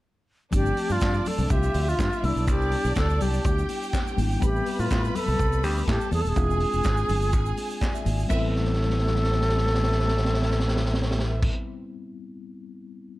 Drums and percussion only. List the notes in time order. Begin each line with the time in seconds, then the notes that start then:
0.52 kick, closed hi-hat, muted conga, shaker
0.66 shaker
0.77 open hi-hat, muted conga
0.90 shaker
1.00 kick, snare, clap, high conga, shaker
1.14 shaker
1.25 open hi-hat, low conga, shaker
1.38 low conga, shaker
1.50 kick, closed hi-hat, muted conga, shaker
1.63 shaker
1.74 open hi-hat, muted conga, shaker
1.88 shaker
1.98 kick, snare, clap, closed hi-hat, high conga, shaker
2.12 shaker
2.23 open hi-hat, high conga, shaker
2.37 shaker
2.47 kick, closed hi-hat, muted conga, shaker
2.61 shaker
2.72 open hi-hat, muted conga
2.85 shaker
2.95 kick, snare, clap, closed hi-hat, high conga, shaker
3.10 shaker
3.20 open hi-hat, low conga, shaker
3.34 shaker
3.44 kick, closed hi-hat, muted conga, shaker
3.58 shaker
3.69 open hi-hat, muted conga, shaker
3.83 shaker
3.93 kick, snare, clap, closed hi-hat, high conga, shaker
4.07 shaker
4.17 open hi-hat, high conga, shaker
4.32 shaker
4.40 kick, closed hi-hat, muted conga, shaker
4.56 shaker
4.66 open hi-hat, muted conga
4.80 shaker
4.90 kick, snare, clap, closed hi-hat, high conga, shaker
5.04 shaker
5.15 open hi-hat, low conga, shaker
5.26 low conga, shaker
5.39 kick, closed hi-hat, muted conga, shaker
5.52 shaker
5.64 open hi-hat, shaker
5.77 shaker
5.87 kick, snare, clap, closed hi-hat, high conga, shaker
6.01 shaker
6.11 open hi-hat, high conga, shaker
6.25 shaker
6.35 kick, closed hi-hat, muted conga, shaker
6.50 shaker
6.60 open hi-hat, muted conga
6.73 shaker
6.84 kick, snare, clap, closed hi-hat, high conga, shaker
6.97 shaker
7.09 open hi-hat, low conga, shaker
7.21 shaker
7.33 kick, closed hi-hat, muted conga, shaker
7.46 shaker
7.57 open hi-hat, muted conga, shaker
7.71 shaker
7.81 kick, snare, clap, closed hi-hat, high conga, shaker
7.95 shaker
8.05 open hi-hat, high conga, shaker
8.19 shaker
8.30 kick, crash, muted conga, shaker
8.55 snare
8.64 snare
8.73 snare
8.81 snare
8.90 snare
8.98 snare
9.06 snare
9.15 snare
9.23 snare
9.32 snare
9.41 snare
9.49 snare
9.57 snare
9.66 snare
9.74 snare
9.83 snare
9.92 snare
9.99 snare
10.08 snare
10.17 snare
10.25 snare
10.33 snare
10.42 snare
10.50 snare
10.60 snare
10.68 snare
10.76 snare
10.85 snare
10.94 snare
11.02 snare
11.11 snare
11.19 snare
11.42 kick, crash